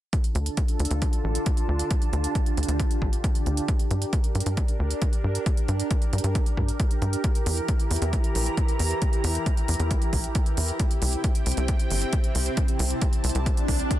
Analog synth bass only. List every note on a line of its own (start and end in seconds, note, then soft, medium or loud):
0.35 0.49 D2 loud
0.80 0.87 D2 medium
0.91 1.05 D2 loud
1.24 1.38 A1 medium
1.68 1.83 D2 medium
2.13 2.27 D2 medium
2.57 2.64 D2 medium
2.68 2.83 D2 loud
3.02 3.16 A1 medium
3.46 3.60 D2 medium
3.91 4.05 G2 medium
4.35 4.42 G2 medium
4.46 4.60 G2 loud
4.79 4.94 D2 medium
5.24 5.38 G2 medium
5.68 5.83 G2 loud
6.13 6.20 G2 medium
6.24 6.38 G2 loud
6.57 6.72 G2 medium
7.02 7.16 G2 medium
7.46 7.60 E2 loud
7.91 7.98 E2 medium
8.02 8.16 E2 loud
8.35 8.49 A#1 medium
8.79 8.94 E2 medium
9.24 9.38 E2 loud
9.68 9.76 E2 medium
9.79 9.94 E2 loud
10.13 10.27 A#1 medium
10.57 10.72 E2 medium
11.02 11.16 C2 loud
11.46 11.53 C2 medium
11.57 11.72 C2 loud
11.91 12.05 G1 loud
12.35 12.49 C2 medium
12.79 12.94 C2 loud
13.24 13.31 C2 medium
13.35 13.49 C2 loud
13.68 13.83 C2 medium